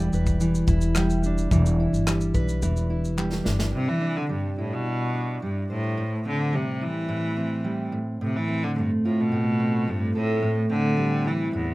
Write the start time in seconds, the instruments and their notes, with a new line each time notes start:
Already playing: steel-string acoustic guitar E3 G3 E4 B4
0.13 upright bass E1, steel-string acoustic guitar B4, shaker
0.26 kick, shaker
0.40 steel-string acoustic guitar E3, shaker
0.55 shaker
0.67 upright bass E1, steel-string acoustic guitar E4, kick, shaker
0.81 shaker
0.95 steel-string acoustic guitar G3, cross-stick, clap, shaker
1.10 shaker
1.23 steel-string acoustic guitar D4, shaker
1.38 shaker
1.51 upright bass E1, steel-string acoustic guitar E3, kick, shaker
1.66 shaker
1.80 steel-string acoustic guitar E4
1.93 upright bass G1, shaker
2.07 steel-string acoustic guitar G3, cross-stick, clap, shaker
2.21 shaker
2.34 upright bass B1, steel-string acoustic guitar B4, kick, shaker
2.49 shaker
2.62 upright bass E1, steel-string acoustic guitar E3, shaker
2.77 shaker
2.90 steel-string acoustic guitar E4
3.05 shaker
3.17 steel-string acoustic guitar G3, clap
3.32 snare
3.44 upright bass G1, steel-string acoustic guitar D4, snare
3.59 snare
3.71 steel-string acoustic guitar C3, cello C3
3.89 cello E3
4.01 steel-string acoustic guitar D4
4.17 cello D3
4.29 cello G2, steel-string acoustic guitar G3
4.58 cello A2, steel-string acoustic guitar E4
4.74 cello B2
5.14 steel-string acoustic guitar D4
5.42 cello G2, steel-string acoustic guitar G3
5.70 cello A2, steel-string acoustic guitar C5
5.98 steel-string acoustic guitar A2
6.25 cello D3, steel-string acoustic guitar C4
6.53 cello C3, steel-string acoustic guitar G3
6.81 cello E3, steel-string acoustic guitar E4
7.08 steel-string acoustic guitar A2
7.37 steel-string acoustic guitar C4
7.64 steel-string acoustic guitar G3
7.92 steel-string acoustic guitar A2
8.21 steel-string acoustic guitar A2, cello C3
8.36 cello E3
8.48 steel-string acoustic guitar C4
8.63 cello D3
8.76 cello G2, steel-string acoustic guitar A3
9.05 cello A2, steel-string acoustic guitar F4
9.20 cello B2
9.32 steel-string acoustic guitar A2
9.60 steel-string acoustic guitar C4
9.88 cello G2, steel-string acoustic guitar A3
10.15 cello A2, steel-string acoustic guitar A4
10.43 steel-string acoustic guitar A2
10.70 cello D3, steel-string acoustic guitar C4
10.97 steel-string acoustic guitar G3
11.24 cello E3, steel-string acoustic guitar E4
11.53 cello E2, steel-string acoustic guitar A2